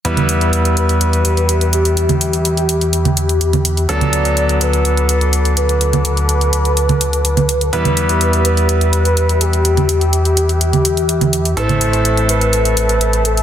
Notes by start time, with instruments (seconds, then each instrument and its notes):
0.05 analog synth bass E2, grand piano G3 B3 E4 B4, analog synth pad G4 E5 B5 E6, soft synth lead B4, closed hi-hat
0.17 closed hi-hat, low conga
0.29 closed hi-hat
0.41 closed hi-hat
0.53 closed hi-hat
0.65 closed hi-hat
0.77 soft synth lead B4, closed hi-hat
0.89 closed hi-hat
1.01 closed hi-hat
1.13 closed hi-hat
1.25 closed hi-hat
1.37 closed hi-hat
1.49 closed hi-hat
1.61 closed hi-hat
1.73 soft synth lead G4, closed hi-hat
1.85 closed hi-hat
1.97 closed hi-hat
2.09 closed hi-hat, low conga
2.21 closed hi-hat
2.33 closed hi-hat
2.45 closed hi-hat
2.57 closed hi-hat
2.69 closed hi-hat
2.81 closed hi-hat
2.93 closed hi-hat
3.05 closed hi-hat, low conga
3.17 closed hi-hat
3.29 closed hi-hat
3.41 closed hi-hat
3.53 closed hi-hat, low conga
3.65 closed hi-hat
3.77 closed hi-hat
3.89 analog synth bass D2, grand piano F#3 B3 D4 A4, analog synth pad A4 F#5 D6, soft synth lead D5, closed hi-hat
4.01 closed hi-hat, low conga
4.13 closed hi-hat
4.25 closed hi-hat
4.37 closed hi-hat
4.49 closed hi-hat
4.61 soft synth lead B4, closed hi-hat
4.73 closed hi-hat
4.85 closed hi-hat
4.97 closed hi-hat
5.09 closed hi-hat
5.21 closed hi-hat
5.33 closed hi-hat
5.45 closed hi-hat
5.57 soft synth lead B4, closed hi-hat
5.69 closed hi-hat
5.81 analog synth pad A5, closed hi-hat
5.93 closed hi-hat, low conga
6.05 closed hi-hat
6.17 closed hi-hat
6.29 closed hi-hat
6.41 closed hi-hat
6.53 closed hi-hat
6.65 closed hi-hat
6.77 closed hi-hat
6.89 closed hi-hat, low conga
7.01 closed hi-hat
7.13 closed hi-hat
7.25 closed hi-hat
7.37 closed hi-hat, low conga
7.49 closed hi-hat
7.61 closed hi-hat
7.73 analog synth bass E2, grand piano G3 B3 E4 B4, analog synth pad G4 E5 B5 E6, soft synth lead B4, closed hi-hat
7.85 closed hi-hat, low conga
7.97 closed hi-hat
8.09 closed hi-hat
8.21 closed hi-hat
8.33 closed hi-hat
8.45 soft synth lead B4, closed hi-hat
8.57 closed hi-hat
8.69 closed hi-hat
8.81 closed hi-hat
8.93 closed hi-hat
9.05 closed hi-hat
9.17 closed hi-hat
9.29 closed hi-hat
9.41 soft synth lead G4, closed hi-hat
9.53 closed hi-hat
9.65 closed hi-hat
9.77 closed hi-hat, low conga
9.89 closed hi-hat
10.01 closed hi-hat
10.13 closed hi-hat
10.25 closed hi-hat
10.37 closed hi-hat
10.49 closed hi-hat
10.61 closed hi-hat
10.73 closed hi-hat, low conga
10.85 closed hi-hat
10.97 closed hi-hat
11.09 closed hi-hat
11.21 closed hi-hat, low conga
11.33 closed hi-hat
11.45 closed hi-hat
11.57 analog synth bass A1, grand piano A2 A3 C4 E4 A4, analog synth pad A4 A5 E6, soft synth lead C5, closed hi-hat
11.69 closed hi-hat, low conga
11.81 closed hi-hat
11.93 closed hi-hat
12.05 closed hi-hat
12.17 closed hi-hat
12.29 soft synth lead B4, closed hi-hat
12.41 closed hi-hat
12.53 closed hi-hat
12.65 closed hi-hat
12.77 closed hi-hat
12.89 closed hi-hat
13.01 closed hi-hat
13.13 closed hi-hat
13.25 soft synth lead A4, closed hi-hat
13.37 closed hi-hat